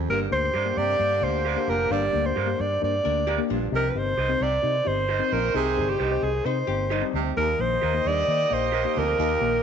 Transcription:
0.09 fingered electric bass G1, tine electric piano G2 A#3 D4 G4 A#4 D5, baritone saxophone G2, horn section D3 A#3 G4, alto saxophone A#4
0.30 fingered electric bass D2, tine electric piano A#3 D4 G4 A#4 C5, alto saxophone C5
0.54 fingered electric bass G2, clean electric guitar G4 A#4 D5
0.65 tine electric piano A#3 D4 G4 A#4 D5
0.77 fingered electric bass G2, baritone saxophone C3, alto saxophone D5
0.98 fingered electric bass G2, tine electric piano A#3 D4 G4 A#4
1.21 fingered electric bass D2, tine electric piano A#3 D4 G4 A#4 D5, alto saxophone C5
1.45 clean electric guitar G4 A#4 D5
1.56 tine electric piano A#3 D4 G4 A#4 F5
1.67 fingered electric bass F1, baritone saxophone A#2, alto saxophone A#4
1.90 fingered electric bass G1, baritone saxophone G2, tine electric piano G2 A#3 D4 G4 A#4 F5, alto saxophone D5
2.12 fingered electric bass D2, tine electric piano A#3 D4 G4 A#4 D5
2.26 alto saxophone C5
2.36 fingered electric bass G2, clean electric guitar G4 A#4 D5
2.46 tine electric piano A#3 D4 G4 A#4 D5
2.60 fingered electric bass G2, alto saxophone D5
2.81 fingered electric bass G2, tine electric piano A#3 D4 G4 A#4 D5, alto saxophone D5
3.04 fingered electric bass D2, tine electric piano A#3 D4 G4 A#4 D5, hollow-body jazz guitar D4 A#4
3.27 hollow-body jazz guitar A#3 G4, clean electric guitar G4 A#4 D5
3.38 tine electric piano A#3 D4 G4 A#4 D5
3.50 fingered electric bass A#1, baritone saxophone G2, hollow-body jazz guitar F3 D4
3.71 fingered electric bass C2, tine electric piano C3 C4 D#4 G4 C5 D#5, baritone saxophone C3
3.76 alto saxophone A#4
3.90 alto saxophone B4
3.95 fingered electric bass G1, tine electric piano C4 D#4 G4 C5 D#5, alto saxophone C5
4.17 fingered electric bass C2, clean electric guitar G4 C5 D#5
4.28 tine electric piano C4 D#4 G4 C5 D#5
4.41 fingered electric bass C2, baritone saxophone C3, alto saxophone D5
4.62 fingered electric bass C3, horn section D#3 D#4 C5, tine electric piano C4 D#4 G4 C5
4.84 fingered electric bass G1, tine electric piano C4 D#4 G4 C5 D#5, alto saxophone C5
5.09 clean electric guitar G4 C5 D#5
5.18 tine electric piano C4 D#4 G4 C5 D#5
5.32 fingered electric bass A#1, baritone saxophone A#2, alto saxophone A#4
5.54 fingered electric bass C2, tine electric piano C3 C4 D#4 G4 C5 D#5, baritone saxophone C3, alto saxophone G#4
5.76 fingered electric bass G1, tine electric piano C4 D#4 G4 C5 D5
5.90 alto saxophone G4
5.99 fingered electric bass C2, clean electric guitar G4 C5 D#5
6.11 tine electric piano C4 D#4 G4 C5 D#5
6.23 fingered electric bass C2, alto saxophone G#4
6.45 fingered electric bass C3, tine electric piano C4 D#4 G4 D#5, hollow-body jazz guitar D#4 C5, alto saxophone C5
6.67 fingered electric bass G1, hollow-body jazz guitar A#3 G4, tine electric piano C4 D#4 G4 C5 D#5
6.90 hollow-body jazz guitar G3 D#4, clean electric guitar G4 C5 D#5
7.01 tine electric piano C4 D#4 G4 C5 D5
7.14 fingered electric bass D2, baritone saxophone C3
7.37 fingered electric bass D#2, baritone saxophone D#2, tine electric piano D#3 A#3 D#4 G4 A#4 D#5, horn section A#3 G4 D#5, alto saxophone A#4
7.59 fingered electric bass A#1, tine electric piano A#3 D#4 G4 A#4 C5, alto saxophone C5
7.82 fingered electric bass D#2, clean electric guitar G4 A#4 D#5
7.94 tine electric piano A#3 D#4 G4 A#4 D#5
8.05 fingered electric bass D#2, baritone saxophone G2, alto saxophone D5
8.27 fingered electric bass D#3, tine electric piano A#3 D#4 G4 A#4 D#5
8.50 fingered electric bass A#1, tine electric piano A#3 D#4 G4 A#4 D#5
8.54 alto saxophone C5
8.72 clean electric guitar G4 A#4 D#5
8.84 tine electric piano A#3 D#4 G4 A#4
8.96 fingered electric bass D2, baritone saxophone F2, alto saxophone A#4
9.18 baritone saxophone D#2, fingered electric bass D#2, tine electric piano D#3 A#3 D#4 G4 A#4 D#5
9.41 fingered electric bass A#1, tine electric piano A#3 D#4 G4 A#4 F5

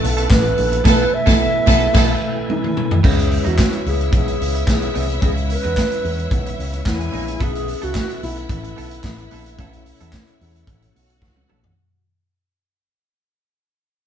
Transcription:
Already playing: tine electric piano B2 A3 C#4 E4 B4, tonewheel organ E3 A3 B3 F#4, string section A3 A5, alto flute A4
0.03 picked electric bass B1, muted clean electric guitar stroke, open hi-hat
0.17 clean electric guitar B3 E4 A4, closed hi-hat
0.30 picked electric bass A1, alto flute B4, muted clean electric guitar stroke, kick, snare, clap, closed hi-hat
0.45 muted clean electric guitar stroke, closed hi-hat
0.58 picked electric bass A#1, open hi-hat
0.72 muted clean electric guitar stroke, closed hi-hat
0.83 picked electric bass B1, tine electric piano B2 A3 E4, clean electric guitar B3 E4 A4, tonewheel organ G#4, string section A4 A5, alto flute B4, kick, snare, crash
1.14 alto flute E5
1.26 picked electric bass B1, tine electric piano B2 A3 E4, clean electric guitar B3 E4 A4, string section A4 A5, kick, snare
1.66 picked electric bass B1, tine electric piano B2 A3 E4, clean electric guitar B3 E4 B4, string section A4 A5, kick, snare
1.93 picked electric bass B1, tine electric piano B2 A3 E4, clean electric guitar B3 E4 A4, string section A4 A5, kick, snare, crash
2.50 alto flute E4, high tom
2.64 mid tom
2.77 mid tom
2.91 floor tom
3.02 picked electric bass C#2, tine electric piano C#3 G#3 C#4 E4 A4, clean electric guitar E3 B3 D#4, tonewheel organ E3 B3 C#4 E4, string section E4 E5, alto flute G#4, kick, crash
3.12 tine electric piano B4
3.18 muted clean electric guitar stroke, closed hi-hat
3.30 muted clean electric guitar stroke, open hi-hat
3.44 picked electric bass E2, clean electric guitar E3 B3 D#4, alto flute F#4, closed hi-hat
3.57 muted clean electric guitar stroke, kick, snare, clap, closed hi-hat
3.72 muted clean electric guitar stroke, closed hi-hat
3.86 picked electric bass C#2, alto flute G#4, open hi-hat
4.00 muted clean electric guitar stroke, closed hi-hat
4.12 picked electric bass B1, alto flute G#4, muted clean electric guitar stroke, kick, closed hi-hat
4.27 muted clean electric guitar stroke, closed hi-hat
4.41 picked electric bass C#2, open hi-hat
4.54 muted clean electric guitar stroke, closed hi-hat
4.67 picked electric bass B1, alto flute G#4, muted clean electric guitar stroke, kick, snare, clap, closed hi-hat
4.81 muted clean electric guitar stroke, closed hi-hat
4.94 picked electric bass C2, clean electric guitar E3 B3 D#4, open hi-hat
5.08 muted clean electric guitar stroke, closed hi-hat
5.21 picked electric bass C#2, tine electric piano C#3 G#3 C#4 E4 B4, clean electric guitar E3 B3 D#4, alto flute G#4, kick, closed hi-hat
5.36 muted clean electric guitar stroke, closed hi-hat
5.49 alto flute B4, muted clean electric guitar stroke, open hi-hat
5.63 picked electric bass E2, clean electric guitar E3 B3 D#4, closed hi-hat
5.76 muted clean electric guitar stroke, kick, snare, clap, closed hi-hat
5.91 muted clean electric guitar stroke, closed hi-hat
6.05 picked electric bass E2, open hi-hat
6.19 muted clean electric guitar stroke, closed hi-hat
6.31 picked electric bass B1, muted clean electric guitar stroke, kick, closed hi-hat
6.46 muted clean electric guitar stroke, closed hi-hat
6.59 picked electric bass C#2, open hi-hat
6.73 muted clean electric guitar stroke, closed hi-hat
6.85 picked electric bass E2, alto flute E4, string section G#4 G#5, muted clean electric guitar stroke, kick, snare, clap, closed hi-hat
7.00 muted clean electric guitar stroke, closed hi-hat
7.12 picked electric bass A#1, clean electric guitar E3 B3 D#4, open hi-hat
7.28 muted clean electric guitar stroke, closed hi-hat
7.39 picked electric bass B1, tine electric piano B2 A3 C#4 E4 B4, tonewheel organ E3 A3 F#4, clean electric guitar B3 E4 A4, string section E4 E5, alto flute G#4, kick, closed hi-hat
7.54 muted clean electric guitar stroke, closed hi-hat
7.67 muted clean electric guitar stroke, open hi-hat
7.82 picked electric bass C#2, clean electric guitar B3 E4 A4, alto flute F#4, closed hi-hat
7.94 muted clean electric guitar stroke, kick, snare, clap, closed hi-hat
8.09 muted clean electric guitar stroke, closed hi-hat
8.23 picked electric bass B1, alto flute E4, open hi-hat
8.37 muted clean electric guitar stroke, closed hi-hat
8.49 picked electric bass A1, muted clean electric guitar stroke, kick, closed hi-hat
8.63 muted clean electric guitar stroke, closed hi-hat
8.77 picked electric bass B1, clean electric guitar B3 E4 A4, open hi-hat
8.91 muted clean electric guitar stroke, closed hi-hat
9.04 picked electric bass A1, muted clean electric guitar stroke, kick, snare, clap, closed hi-hat
9.18 muted clean electric guitar stroke, closed hi-hat
9.31 picked electric bass A#1, clean electric guitar B3 E4 A4, open hi-hat
9.46 closed hi-hat
9.57 picked electric bass B1, tine electric piano B2 A3 C#4 E4 B4, clean electric guitar B3 E4 A4, tonewheel organ C#4, kick, closed hi-hat
9.73 muted clean electric guitar stroke, closed hi-hat
9.86 muted clean electric guitar stroke, open hi-hat
10.00 picked electric bass E2, clean electric guitar B3 E4 A4, closed hi-hat
10.13 kick, snare, clap, closed hi-hat
10.27 muted clean electric guitar stroke, closed hi-hat
10.41 picked electric bass E2, open hi-hat
10.56 muted clean electric guitar stroke, closed hi-hat
10.67 picked electric bass A1, muted clean electric guitar stroke, kick, closed hi-hat
10.82 muted clean electric guitar stroke, closed hi-hat
10.95 picked electric bass B1, string section F#4 F#5, open hi-hat
11.10 muted clean electric guitar stroke, closed hi-hat
11.22 picked electric bass C#2, muted clean electric guitar stroke, kick, snare
11.36 muted clean electric guitar stroke, high tom
11.49 picked electric bass A#1, clean electric guitar B3 E4 A4, mid tom
11.63 muted clean electric guitar stroke, floor tom

